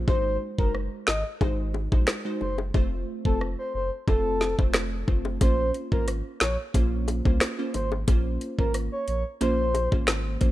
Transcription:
0.07 0.38 G#1 loud
0.07 0.54 G#3 medium
0.07 0.55 D#4 medium
0.07 0.55 F#4 medium
0.07 0.37 C5 loud
0.07 0.55 C5 loud
0.07 kick loud
0.07 high bongo medium
0.58 0.89 F#1 medium
0.58 0.75 G#3 medium
0.58 0.75 D#4 medium
0.58 0.75 F#4 medium
0.58 0.72 A#4 medium
0.58 0.75 C5 medium
0.58 kick medium
0.75 cross-stick medium
1.07 1.24 G#1 medium
1.07 1.23 D#5 medium
1.07 finger snap medium
1.07 snare loud
1.41 1.88 G#1 loud
1.41 1.88 G#3 medium
1.41 1.88 D#4 medium
1.41 1.88 F#4 medium
1.41 1.88 C5 loud
1.41 kick medium
1.41 high bongo medium
1.74 high bongo medium
1.92 2.06 A#1 medium
1.92 2.08 G#3 medium
1.92 2.08 D#4 medium
1.92 2.08 F#4 medium
1.92 2.08 C5 medium
1.92 kick loud
1.92 high bongo medium
2.07 finger snap medium
2.07 cross-stick medium
2.07 snare loud
2.25 2.42 G#3 medium
2.25 2.42 D#4 medium
2.25 2.42 F#4 medium
2.25 2.42 C5 medium
2.41 2.71 F#1 medium
2.41 2.57 C5 medium
2.41 low bongo medium
2.58 high bongo medium
2.74 3.04 F1 loud
2.74 3.21 A3 medium
2.74 3.21 C4 medium
2.74 3.21 F4 medium
2.74 3.21 C5 loud
2.74 kick loud
2.74 high bongo medium
3.25 3.55 F1 loud
3.25 3.42 A3 medium
3.25 3.42 C4 medium
3.25 3.42 F4 medium
3.25 3.39 A4 medium
3.25 3.42 C5 medium
3.25 kick medium
3.41 cross-stick medium
3.59 3.72 C5 medium
3.74 3.90 F#1 medium
3.74 3.90 C5 medium
4.08 4.55 F1 loud
4.08 4.54 A3 medium
4.08 4.55 C4 medium
4.08 4.55 F4 medium
4.08 4.56 A4 loud
4.08 4.55 C5 loud
4.08 kick medium
4.08 high bongo medium
4.41 snare medium
4.41 high bongo medium
4.59 5.04 F1 medium
4.59 5.04 A3 medium
4.59 5.04 C4 medium
4.59 5.04 F4 medium
4.59 5.04 C5 medium
4.59 kick loud
4.59 high bongo medium
4.74 finger snap medium
4.74 cross-stick medium
4.74 snare loud
5.08 5.38 F#1 medium
5.08 5.39 A3 medium
5.08 5.39 C4 medium
5.08 5.39 F4 medium
5.08 5.39 C5 medium
5.08 kick medium
5.08 low bongo medium
5.25 high bongo medium
5.41 5.71 A#1 loud
5.41 5.88 A#3 loud
5.41 5.88 C#4 medium
5.41 5.88 F4 medium
5.41 5.70 C5 loud
5.41 5.88 C5 loud
5.41 kick loud
5.41 closed hi-hat medium
5.41 high bongo medium
5.74 closed hi-hat soft
5.92 6.22 G#1 medium
5.92 6.08 A#3 medium
5.92 6.08 C#4 medium
5.92 6.08 F4 medium
5.92 6.06 A#4 medium
5.92 6.09 C5 medium
5.92 kick medium
6.08 cross-stick medium
6.08 closed hi-hat medium
6.40 6.57 A#1 medium
6.40 6.57 C#5 medium
6.40 finger snap medium
6.40 snare loud
6.40 closed hi-hat soft
6.74 7.21 A#1 loud
6.74 7.21 A#3 medium
6.74 7.21 C#4 medium
6.74 7.21 F4 medium
6.74 7.21 C5 loud
6.74 kick medium
6.74 closed hi-hat medium
6.74 high bongo medium
7.08 closed hi-hat medium
7.08 high bongo medium
7.25 7.40 C2 medium
7.25 7.42 A#3 medium
7.25 7.42 C#4 medium
7.25 7.42 F4 medium
7.25 7.42 C5 medium
7.25 kick loud
7.25 high bongo medium
7.40 finger snap medium
7.40 cross-stick loud
7.40 snare loud
7.40 closed hi-hat medium
7.59 7.75 A#3 medium
7.59 7.75 C#4 medium
7.59 7.75 F4 medium
7.59 7.75 C5 medium
7.74 8.05 G#1 loud
7.74 7.90 C5 medium
7.74 closed hi-hat medium
7.74 low bongo medium
7.92 high bongo medium
8.07 8.38 A#1 loud
8.07 8.54 A#3 medium
8.07 8.54 C#4 medium
8.07 8.55 F4 medium
8.07 8.55 C5 loud
8.07 kick loud
8.07 closed hi-hat medium
8.07 high bongo medium
8.41 closed hi-hat soft
8.59 8.89 G#1 medium
8.59 8.75 A#3 medium
8.59 8.75 C#4 medium
8.59 8.75 F4 medium
8.59 8.73 A#4 medium
8.59 8.75 C5 medium
8.59 kick medium
8.74 cross-stick medium
8.74 closed hi-hat medium
8.92 9.06 C#5 medium
9.08 9.24 A#1 loud
9.08 9.23 C#5 medium
9.08 closed hi-hat soft
9.41 9.88 A#1 loud
9.41 9.88 A#3 medium
9.41 9.88 C#4 medium
9.41 9.88 F4 medium
9.41 9.89 C5 loud
9.41 9.88 C5 loud
9.41 closed hi-hat medium
9.41 high bongo medium
9.74 closed hi-hat medium
9.74 high bongo medium
9.92 10.37 G#1 loud
9.92 10.37 A#3 medium
9.92 10.37 C#4 medium
9.92 10.37 F4 medium
9.92 10.37 C5 medium
9.92 kick loud
9.92 high bongo medium
10.07 finger snap medium
10.07 cross-stick medium
10.07 snare loud
10.07 closed hi-hat medium
10.41 10.52 A#1 medium
10.41 10.52 A#3 medium
10.41 10.52 C#4 medium
10.41 10.52 F4 medium
10.41 10.52 C5 medium
10.41 kick medium
10.41 closed hi-hat soft
10.41 low bongo medium

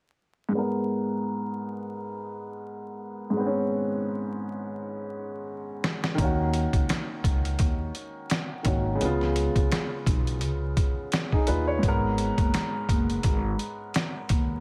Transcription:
0.49 3.29 G#2 medium
0.49 3.31 G#3 medium
0.55 3.33 B3 medium
0.55 3.34 A#4 medium
3.30 6.11 G#2 medium
3.30 6.13 G#3 medium
3.37 6.15 B3 medium
3.37 3.45 C4 medium
3.46 6.19 C#4 medium
5.84 snare loud
6.04 snare medium
6.15 8.59 D#3 medium
6.15 8.61 A#3 medium
6.15 kick loud
6.15 closed hi-hat medium
6.19 6.64 D#2 loud
6.19 8.63 C#4 medium
6.24 8.64 F#4 medium
6.53 closed hi-hat medium
6.73 6.87 C#2 medium
6.73 kick medium
6.73 closed hi-hat medium
6.89 snare loud
6.89 closed hi-hat loud
7.24 7.54 C#2 medium
7.24 kick loud
7.24 closed hi-hat medium
7.45 closed hi-hat soft
7.59 7.89 D#2 loud
7.59 kick medium
7.59 closed hi-hat medium
7.95 closed hi-hat medium
8.30 snare loud
8.30 closed hi-hat medium
8.63 8.95 G#1 medium
8.63 8.99 D#3 medium
8.63 9.00 A#3 medium
8.63 9.01 C#4 medium
8.63 kick medium
8.63 closed hi-hat medium
8.68 9.02 F#4 medium
8.95 11.76 C#3 medium
8.95 11.78 G#3 medium
9.01 9.47 C#2 medium
9.01 11.80 B3 medium
9.01 closed hi-hat medium
9.05 11.11 F4 medium
9.21 snare soft
9.36 closed hi-hat medium
9.56 9.69 C#2 medium
9.56 kick medium
9.56 closed hi-hat medium
9.72 snare loud
9.72 closed hi-hat medium
10.06 10.43 B1 medium
10.06 kick loud
10.06 closed hi-hat medium
10.27 closed hi-hat medium
10.41 10.72 C#2 medium
10.41 closed hi-hat medium
10.77 kick medium
10.77 closed hi-hat medium
11.12 snare loud
11.12 closed hi-hat medium
11.32 11.48 D#4 medium
11.32 11.47 G#4 medium
11.32 kick medium
11.47 11.78 D#2 medium
11.47 11.67 F4 medium
11.47 11.66 B4 medium
11.47 closed hi-hat medium
11.67 12.01 G#4 medium
11.67 12.01 C#5 medium
11.79 14.58 G#2 medium
11.79 14.60 G#3 medium
11.83 12.29 G#1 loud
11.83 14.60 B3 medium
11.83 kick loud
11.83 closed hi-hat medium
11.88 14.60 A#4 medium
12.18 closed hi-hat medium
12.38 12.51 F#1 medium
12.38 kick medium
12.38 closed hi-hat medium
12.54 snare loud
12.54 closed hi-hat medium
12.89 13.18 F#1 medium
12.89 kick medium
12.89 closed hi-hat medium
13.10 closed hi-hat soft
13.23 13.54 G#1 loud
13.23 kick medium
13.23 closed hi-hat medium
13.59 closed hi-hat medium
13.94 snare loud
13.94 closed hi-hat medium
14.29 14.60 D#2 medium
14.29 kick medium
14.29 closed hi-hat medium

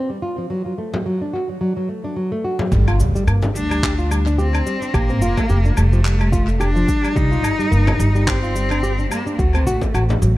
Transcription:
0.10 0.17 G3 medium
0.22 0.36 F4 medium
0.38 0.49 F3 medium
0.50 0.65 F#3 medium
0.66 0.73 F#3 medium
0.78 0.93 A3 medium
0.94 1.05 F#3 medium
0.94 frame drum medium
1.06 1.20 F#3 medium
1.22 1.32 D4 medium
1.33 1.47 F#4 medium
1.49 1.60 F#3 medium
1.61 1.75 F#3 medium
1.77 1.87 F#3 medium
1.89 2.04 A3 medium
2.04 2.15 D4 medium
2.16 2.30 F#3 medium
2.32 2.43 A3 loud
2.44 2.58 F#4 medium
2.59 2.71 F#3 medium
2.59 frame drum medium
2.72 3.01 G1 loud
2.72 2.87 G3 loud
2.72 kick loud
2.72 impact medium
2.72 cabasa soft
2.88 2.99 F4 medium
2.88 cabasa soft
2.88 low woodblock medium
2.99 3.10 D2 medium
2.99 3.14 G3 medium
2.99 cabasa medium
3.15 3.27 G3 medium
3.15 cabasa soft
3.27 3.47 G2 loud
3.27 3.41 A#3 medium
3.27 cabasa soft
3.27 low woodblock medium
3.42 3.50 D4 medium
3.42 frame drum medium
3.42 cabasa soft
3.55 4.60 D2 medium
3.55 3.64 G3 medium
3.55 4.07 D4 loud
3.55 cabasa medium
3.71 3.82 G3 loud
3.71 cabasa soft
3.71 low woodblock medium
3.83 3.98 G4 loud
3.83 kick loud
3.83 clap medium
3.83 cabasa soft
3.98 4.09 F4 medium
3.98 cabasa soft
4.11 4.26 G3 medium
4.11 cabasa medium
4.11 low woodblock medium
4.26 4.38 D4 loud
4.26 cabasa soft
4.38 4.95 C4 loud
4.38 4.47 G4 loud
4.38 cabasa soft
4.54 4.61 D4 medium
4.54 cabasa soft
4.54 low woodblock medium
4.66 4.75 G3 medium
4.66 cabasa medium
4.82 4.93 D4 medium
4.82 cabasa soft
4.93 5.22 A#1 loud
4.93 5.78 A#3 loud
4.93 5.09 G4 loud
4.93 kick loud
4.93 cabasa soft
4.93 low woodblock medium
5.10 5.21 C4 loud
5.10 cabasa soft
5.22 5.32 F1 medium
5.22 5.36 F4 loud
5.22 cabasa medium
5.37 5.49 A3 medium
5.37 kick medium
5.37 frame drum medium
5.37 cabasa soft
5.37 low woodblock medium
5.49 5.69 F1 loud
5.49 5.59 G4 loud
5.49 cabasa soft
5.65 5.72 D4 medium
5.65 cabasa soft
5.77 6.82 F1 loud
5.77 5.86 G3 medium
5.77 6.61 A3 loud
5.77 cabasa medium
5.77 low woodblock medium
5.93 6.00 F3 medium
5.93 cabasa soft
6.05 6.19 G3 medium
6.05 clap medium
6.05 cabasa soft
6.20 6.32 G3 medium
6.20 cabasa soft
6.20 low woodblock medium
6.32 6.47 F4 loud
6.32 kick loud
6.32 cabasa medium
6.48 6.60 A3 medium
6.48 cabasa soft
6.60 7.18 D4 loud
6.60 6.69 G4 loud
6.60 cabasa soft
6.60 low woodblock medium
6.76 6.88 F3 loud
6.76 cabasa soft
6.88 6.97 G3 medium
6.88 kick loud
6.88 cabasa medium
7.04 7.14 G3 medium
7.04 cabasa soft
7.04 low woodblock medium
7.16 7.44 C2 loud
7.16 7.31 G3 loud
7.16 8.30 D#4 loud
7.16 kick loud
7.16 cabasa soft
7.31 7.43 F4 medium
7.31 cabasa soft
7.43 7.54 G1 medium
7.43 7.58 G3 medium
7.43 cabasa medium
7.43 low woodblock medium
7.59 7.71 G3 loud
7.59 cabasa soft
7.71 7.91 G1 loud
7.71 7.86 A#3 medium
7.71 cabasa soft
7.87 7.94 D4 medium
7.87 frame drum medium
7.87 cabasa soft
7.87 low woodblock medium
7.99 9.04 G1 loud
7.99 8.09 G3 medium
7.99 cabasa medium
8.15 8.26 G3 loud
8.15 cabasa soft
8.27 9.11 C4 loud
8.27 8.42 G4 loud
8.27 kick loud
8.27 clap medium
8.27 cabasa soft
8.27 low woodblock medium
8.43 8.54 F4 medium
8.43 cabasa soft
8.55 8.70 G3 medium
8.55 cabasa medium
8.71 8.82 D4 loud
8.71 cabasa soft
8.71 low woodblock medium
8.83 8.92 G4 loud
8.83 cabasa soft
8.99 9.06 D4 medium
8.99 cabasa soft
9.11 9.20 G3 medium
9.11 9.31 A#3 medium
9.11 cabasa medium
9.11 low woodblock medium
9.26 9.37 D4 medium
9.26 cabasa soft
9.32 9.41 A#3 medium
9.39 9.67 D2 medium
9.39 9.94 A3 medium
9.39 9.54 F#4 loud
9.39 kick loud
9.39 cabasa medium
9.54 9.66 C4 loud
9.54 cabasa soft
9.54 low woodblock medium
9.67 9.77 A1 medium
9.67 9.81 F#4 loud
9.67 cabasa medium
9.82 9.94 A3 medium
9.82 kick medium
9.82 frame drum medium
9.82 cabasa soft
9.94 10.14 A1 loud
9.94 10.03 F#4 loud
9.94 cabasa soft
9.94 low woodblock medium
10.10 10.17 D4 medium
10.10 frame drum medium
10.10 cabasa soft
10.22 10.38 A1 loud
10.22 10.31 F#3 medium
10.22 cabasa medium

